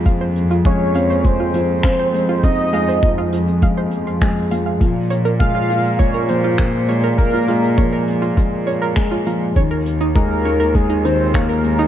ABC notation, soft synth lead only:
X:1
M:4/4
L:1/8
Q:1/4=101
K:Fm
V:1 name="Soft synth lead"
z2 d2 c4 | e e2 z4 z | z2 f2 d c2 z | B3 z4 z |
z2 B2 A c B2 |]